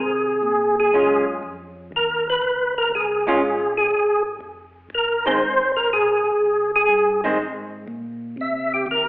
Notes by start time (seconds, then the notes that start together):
Already playing: C3 G#4
0.43 A#2
0.80 G#4
0.93 F#2 G#3 C#4 F4
1.43 F2
1.92 D#2
1.96 A#4
2.30 B4
2.42 C#2
2.78 A#4
2.91 C2
2.95 G#4
3.27 G#3 C#4 F4
3.41 A#1
3.77 G#4
3.91 G#1
4.40 F1
4.90 G1
4.95 A#4
5.26 D#3 G#3 C4 C5
5.40 G#1
5.76 A#4
5.89 A#1 G#4
6.24 A#1
6.39 C2
6.76 G#4
6.89 G2
7.24 D#3 G#3 C4
7.38 G#2
7.88 A#2
8.37 C3 E5
8.74 G4
8.86 D#2
8.91 A#4